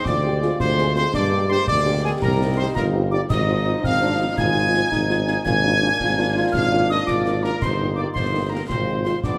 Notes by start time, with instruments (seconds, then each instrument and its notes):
Already playing: trombone section G#3 C4
0.05 tuba D2, euphonium F4, trumpet section D5, piccolo D6, concert bass drum, snare
0.24 french horn section C4 F4 G#4, euphonium G4
0.41 french horn section C4 F4 G#4, euphonium F4, snare
0.59 tuba D2, trumpet section C5, piccolo C6, concert bass drum, snare
0.78 french horn section C4 F4 G#4, snare
0.95 french horn section C4 F4 G#4, trumpet section C5, piccolo C6, snare
1.13 tuba G2, trombone section A#3, euphonium D4, trumpet section D5, piccolo D6, concert bass drum, snare
1.32 french horn section A#3 D4 G4
1.49 french horn section A#3 D4 G4, trumpet section C5, piccolo C6
1.67 tuba D2, euphonium G4, trumpet section D5, piccolo D6, concert bass drum, snare
1.86 french horn section A#3 D4 G4
2.03 french horn section A#3 D4 G4, trumpet section G#4, piccolo G#5
2.21 tuba C2, trombone section G3 D#4, trumpet section A#4, piccolo A#5, concert bass drum, snare
2.40 french horn section C4 D#4 G4
2.57 french horn section C4 D#4 G4, trumpet section C5, piccolo C6
2.74 tuba G1, euphonium F4, trumpet section A#4, piccolo A#5, concert bass drum, snare
2.93 french horn section C4 D#4 G4
3.11 french horn section C4 D#4 G4, trumpet section D5, piccolo D6
3.29 tuba G#1, trombone section F3 D#4, euphonium D#4, trumpet section D#5, piccolo D#6, concert bass drum, snare, crash
3.47 french horn section C4 D#4 F4
3.65 french horn section C4 D#4 F4
3.83 tuba G#1, euphonium C4, trumpet section F5, piccolo F6, concert bass drum, snare
4.01 french horn section C4 D#4 F4, euphonium D4
4.18 french horn section C4 D#4 F4, euphonium D#4
4.38 tuba G#1, euphonium F4, trumpet section G#5, piccolo G#6, concert bass drum, snare
4.56 french horn section C4 D#4 F4
4.74 french horn section C4 D#4 F4, snare
4.92 tuba G#1, euphonium D#4, concert bass drum, snare
5.09 french horn section C4 D#4 F4, snare
5.27 french horn section C4 D#4 F4, snare
5.43 tuba G#1, trombone section A#3 D4, euphonium F4, trumpet section G#5, piccolo G#6, concert bass drum, snare
5.64 french horn section A#3 D4 F4, euphonium D#4
5.81 french horn section A#3 D4 F4, euphonium D4
6.00 tuba G#1, euphonium F4, concert bass drum, snare
6.17 french horn section A#3 D4 F4, euphonium D4
6.34 french horn section A#3 D4 F4, euphonium F4
6.52 tuba G#1, trumpet section F5, piccolo F6, concert bass drum, snare
6.72 french horn section A#3 D4 F4
6.90 french horn section A#3 D4 F4, trumpet section D#5, piccolo D#6, snare
7.06 tuba G#1, euphonium F4, trumpet section D5, piccolo D6, concert bass drum, snare
7.26 french horn section A#3 D4 F4, snare
7.43 french horn section A#3 D4 F4, trumpet section A#4, piccolo A#5, snare
7.60 tuba G1, trombone section A#3 D#4, euphonium D#4, trumpet section C5, piccolo C6, concert bass drum, snare, crash
7.80 french horn section A#3 D#4 G4
7.95 french horn section A#3 D#4 G4, trumpet section D5, piccolo D6
8.13 tuba G1, trumpet section C5, piccolo C6, concert bass drum, snare
8.33 french horn section A#3 D#4 G4
8.49 french horn section A#3 D#4 G4, trumpet section A#4, piccolo A#5
8.68 tuba G#1, trombone section F3 C4, euphonium F4, trumpet section C5, piccolo C6, concert bass drum, snare
8.87 french horn section G#3 C4 F4
9.04 french horn section G#3 C4 F4, trumpet section C5, piccolo C6, snare
9.23 tuba A#1, trombone section G#3 B3, euphonium D4, trumpet section D5, piccolo D6, concert bass drum, snare